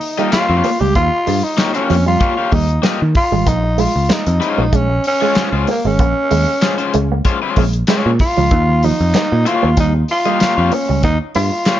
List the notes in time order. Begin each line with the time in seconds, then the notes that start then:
Already playing: D#4
0.01 open hi-hat
0.17 G3 A#3 D#4 F4 G4 D#5, closed hi-hat
0.31 A#3 F4 G4 C#5, muted clean electric guitar stroke, muted picked electric bass stroke, snare, clap, closed hi-hat
0.48 F2 A#3 F4 G4 C#5
0.64 A#3, open hi-hat
0.80 C#2 G3 G4
0.95 D#2 A#3 F4, kick, closed hi-hat
1.27 G2 G3, open hi-hat
1.43 D#4, muted clean electric guitar stroke
1.57 A#3 F4 G4 C#5, muted clean electric guitar stroke, snare, clap, closed hi-hat
1.74 A#3 C#4 F4 G4 C#5, closed hi-hat
1.90 F2 F3, open hi-hat
2.06 G3 F4
2.20 A#3 F4 G4 C#5, kick, closed hi-hat
2.38 A#3 F4 G4 C#5
2.52 D#2 G3 D#4, kick, open hi-hat
2.69 closed hi-hat
2.82 A#3 F4 G4 D#5, snare, clap, closed hi-hat
3.02 D#3
3.15 F4, muted clean electric guitar stroke, kick, open hi-hat
3.32 G#1 G3
3.46 A#1 A#3 D#4, kick, closed hi-hat
3.64 muted clean electric guitar stroke
3.78 G#3 F4, open hi-hat
3.96 C#2
4.09 A#3 D#4, muted picked electric bass stroke, snare, clap, closed hi-hat
4.27 F2, muted clean electric guitar stroke, closed hi-hat
4.40 G#3 C#4 F4 C5, closed hi-hat
4.58 A#1 A#3
4.73 A#1 G#3 C#4, kick, closed hi-hat
4.89 muted clean electric guitar stroke
5.04 C#4, open hi-hat
5.21 G#3 C#4 F4 C#5
5.35 G#3 C#4 F4 C5, muted picked electric bass stroke, muted clean electric guitar stroke, snare, clap, closed hi-hat
5.53 C#2 G#3 C#4 F4 C5
5.67 A#3, open hi-hat
5.85 G#1 G#3 C#4
5.99 A#1 A#3, kick, closed hi-hat
6.31 D#2 G#3, open hi-hat
6.48 muted clean electric guitar stroke
6.62 G#3 C#4 F4 C5, muted clean electric guitar stroke, snare, clap, closed hi-hat
6.78 G#3 C#4 F4 C5, closed hi-hat
6.94 C#2 G#3, closed hi-hat
7.12 A#3
7.25 G#3 C#4 F4 C5, kick, closed hi-hat
7.42 G#3 C#4 F4 C5
7.56 A#1 G#3, kick, open hi-hat
7.73 closed hi-hat
7.87 G#3 C#4 F4 C#5, snare, clap, closed hi-hat
8.06 A#2
8.19 F4, muted clean electric guitar stroke, kick, open hi-hat
8.37 C#2 F3
8.51 D#2 D#3, kick, closed hi-hat
8.69 muted clean electric guitar stroke
8.83 F3 D#4, open hi-hat
9.01 F2
9.14 A#3, muted picked electric bass stroke, snare, clap, closed hi-hat
9.32 A#2, muted clean electric guitar stroke
9.46 A#3 F4 G4 C#5, closed hi-hat
9.63 D#2 A#3
9.77 D#2 G3 D#4, kick, closed hi-hat
9.94 muted clean electric guitar stroke
10.08 F4, open hi-hat
10.25 G3 A#3 F4 G4 D#5, closed hi-hat
10.40 A#3 F4 G4 C#5, muted clean electric guitar stroke, muted picked electric bass stroke, snare, clap, closed hi-hat
10.57 F2 A#3 F4 G4 C#5
10.72 A#3 C#4, open hi-hat
10.89 C#2 G3
11.03 D#2 A#3 D#4, kick, closed hi-hat
11.35 G2 A#3 F4, open hi-hat
11.53 muted clean electric guitar stroke
11.66 A#3 F4 G4 C#5, muted clean electric guitar stroke, snare, clap, closed hi-hat